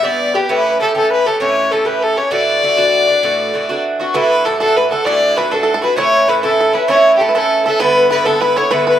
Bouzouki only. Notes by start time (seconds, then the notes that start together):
0.03 G2 E3 B3 G4
0.34 E3 B3 G4
0.49 A2 E3 C#4 G4
0.80 A2 E3 C#4 G4
0.95 A2 E3 C#4 G4
1.26 E3 C#4 G4
1.40 A2 E3 C#4 G4
1.71 A2 E3 C#4 G4
1.85 A2 E3 C#4 G4
2.16 E3 C#4 G4
2.31 A2 E3 D4 F#4
2.62 A2 E3 D4 F#4
2.77 A2 E3 D4 F#4
3.08 E3 D4 F#4
3.23 A2 E3 D4 F#4
3.54 A2 E3 D4 F#4
3.69 A2 E3 D4 F#4
3.99 E3 D4 F#4
4.14 A2 E3 D4 F#4
4.45 A2 E3 D4 F#4
4.60 A2 E3 D4 F#4
4.91 E3 D4 F#4
5.06 A2 E3 D4 F#4
5.36 A2 E3 D4 F#4
5.51 A2 E3 D4 F#4
5.82 E3 D4 F#4
5.97 A2 E3 C#4 E4
6.27 A2 E3 C#4 E4
6.43 A2 E3 C#4 E4
6.73 E3 C#4 E4
6.88 A2 E3 C#4 E4
7.19 A2 E3 C#4 E4
7.35 A2 E3 C#4 E4
7.66 E3 C#4 E4
7.80 G2 D3 B3 E4
8.11 G2 D3 B3 E4
8.26 G2 D3 B3 E4
8.56 D3 B3 E4
8.71 G2 D3 B3 E4